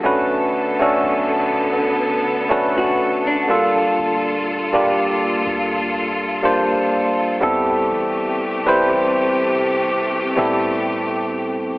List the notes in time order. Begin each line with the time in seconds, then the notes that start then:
0.03 B1 D3 A3 B3 C#4 D4 F#4 A4 B4
0.79 A3 C#4 D4 F#4 A4
1.03 B1
2.49 B1 A3 C#4 D4 F#4 A4 B4
2.77 F#4
3.27 D4
3.48 A#2 G3 A#3 D4 F4 A4
3.98 G1
4.73 G3 A#3 D4 F4 G4
5.46 D2
6.42 G3 A#3 D4 F4 C5
7.41 E2 C3 G3 A3 B3 C4 E4 G4 A4
7.92 A1
8.66 G3 C4 E4 B4 C5
8.90 A1
10.36 A2 G3 B3 C4 E4 A4